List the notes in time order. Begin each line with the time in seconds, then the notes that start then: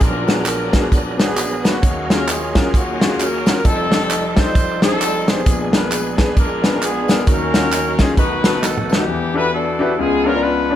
0.00 A#1 A#2 F#3 B3 D4 F4 G#4 A#4, kick, closed hi-hat, tambourine
0.27 B3 D4 F#4 G#4, snare, closed hi-hat, tambourine
0.46 D4 F4 A#4, clap, closed hi-hat, tambourine
0.72 B3 D4 F#4 G#4, kick, snare, closed hi-hat, tambourine
0.92 kick, closed hi-hat, tambourine
1.17 B3 D4 F#4 G#4, snare, closed hi-hat, tambourine
1.22 G#4
1.26 B3 D4 F#4 B4
1.37 clap, closed hi-hat, tambourine
1.63 A#3 B3 C#4 D4 F#4 B4, snare, closed hi-hat, tambourine
1.82 D#2 D#3 F#3 C#4 D#4 G#4 F5, kick, closed hi-hat, tambourine
2.09 C#4 F4 F#4 G#4 A#4, snare, closed hi-hat, tambourine
2.28 C#4 F4 G#4, clap, closed hi-hat, tambourine
2.55 C#4 F4 F#4 A#4, kick, snare, closed hi-hat, tambourine
2.74 A#3 C#4 F#4, kick, closed hi-hat, tambourine
3.00 C#4 F4 F#4 G#4, snare, closed hi-hat, tambourine
3.09 C#4 F4 F#4 G#4
3.19 C#4 F#4 A#4, clap, closed hi-hat, tambourine
3.45 C#4 F4 F#4 A#4, snare, closed hi-hat, tambourine
3.57 A#4
3.64 F1 F2 G3 C4 D#4 F4 A4 D5, kick, closed hi-hat, tambourine
3.91 D4 D#4 G4 A4, snare, closed hi-hat, tambourine
4.10 clap, closed hi-hat, tambourine
4.36 D4 D#4 G4 A4 C5, kick, snare, closed hi-hat, tambourine
4.55 kick, closed hi-hat, tambourine
4.82 C4 D4 D#4 G4 A4 C5, snare, closed hi-hat, tambourine
4.90 D4 D#4 G4 A4
5.01 clap, closed hi-hat, tambourine
5.27 B3 D4 D#4 G4 G#4 C5, snare, closed hi-hat, tambourine
5.46 A#1 A#2 G#3 B3 D4 G#4, kick, closed hi-hat, tambourine
5.72 B3 D4 G#4 A#4 B4, snare, closed hi-hat, tambourine
5.92 clap, closed hi-hat, tambourine
6.17 B3 D4 G#4 B4, kick, snare, closed hi-hat, tambourine
6.37 D4 F4 A#4, kick, closed hi-hat, tambourine
6.63 B3 D4 G#4 B4, snare, closed hi-hat, tambourine
6.73 B3 D4 G#4 A#4
6.82 B3 D4 G#4, clap, closed hi-hat, tambourine
7.08 B3 D4 G#4 A#4, snare, closed hi-hat, tambourine
7.27 D#2 D#3 F#3 C#4 F#4 A#4 F5, kick, closed hi-hat, tambourine
7.54 C#4 D#4 F4 F#4, snare, closed hi-hat, tambourine
7.72 clap, closed hi-hat, tambourine
7.99 C#4 D#4 F4 G#4, kick, snare, closed hi-hat, tambourine
8.17 B1 B2 D#3 A3 B3 D#4 F4 F#4 B4, kick, closed hi-hat, tambourine
8.23 F#4
8.44 B3 D#4 F#4 A4, snare, closed hi-hat, tambourine
8.53 B3 D#4 F#4 A4
8.63 D#4 F#4 A4, snare, clap, tambourine
8.77 mid tom
8.90 B3 D4 D#4 F#4 G4 A4, snare, tambourine
9.08 E2 E3
9.34 D4 E4 F#4 G4 A4 B4
9.54 D4 F#4 A4
9.79 D4 E4 F#4 G4 B4
9.99 C#2 C#3 B3 F4 G#4
10.25 D4 F4 G#4 A#4 B4 C#5
10.34 D4 F4 G#4 B4 D5
10.43 D4 F4 B4
10.70 D4 F4 G#4 B4 C#5